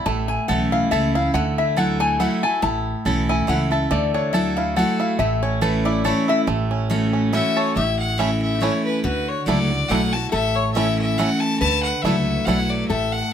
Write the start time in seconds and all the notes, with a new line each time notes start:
Already playing: E4 A4
0.06 A1 A2 A3 A5
0.28 G#5
0.48 B1 E3 A3 C#4 E4 A4 F#5
0.72 E4 F5
0.91 C#2 E3 A3 C#4 E4 A4 E5
1.15 C#4 E4 F5
1.34 D2 D3 A3 F#5
1.58 E4 E5
1.76 F#3 A3 E4 F#4 A4 F#5
2.00 A3 G#5
2.20 F#3 A3 E4 F#4 F#5
2.43 E4 F#4 A4 G#5
2.62 A1 A2 E4 A5
3.05 B1 E3 A3 C#4 E4 A4
3.29 E4 G#5
3.47 C#2 E3 A3 C#4 E4 F#5
3.71 C#4 E4 A4 E5
3.91 D2 D3 A3 D5
4.14 D4 C#5
4.33 F#3 A3 E4 F#4 A4 E5
4.57 E4 F5
4.76 F#3 A3 E4 F#4 A4 F#5
5.00 E4 F5
5.19 A1 A2 A3 E5
5.43 C#4 C#5
5.61 E3 A3 C#4 E4 A4 B4
5.85 E4 D5
6.04 E3 A3 C#4 E4 A4 C#5
6.28 E4 E5
6.47 A1 A2 A3
6.71 C#4
6.90 E3 A3 C#4 F#4
7.13 C#4
7.33 E3 A3 C#4 E4 F#4 E5
7.57 A4 C#5
7.76 A1 A2 E4 E5
7.99 F#5
8.18 E3 A3 C#4 E4 E5
8.42 E5
8.60 E3 A3 C#4 D4 E4 C#5
8.85 B4
9.04 D2 D3 F#4 B4
9.28 C#5
9.46 C#2 F#3 A3 D4 E4 F#4 D5
9.70 E4 F#4
9.89 B1 F#3 A3 D4 E4 F#4 F#5
10.13 E4 F#4 A5
10.31 A1 A2 A4 E5
10.55 C#5
10.73 E3 A3 C#4 E4 E5
10.99 E5
11.18 E3 A3 C#4 E4 F#5
11.40 A5
11.60 D2 D3 B4 A5
11.83 F#5
12.02 C#2 F#3 A3 D4 E4 E5
12.06 E4 F#4
12.45 B1 F#3 A3 D4 E4 F#5
12.49 F#4
12.70 D5
12.88 A1 A2 A4 E5
13.12 F#5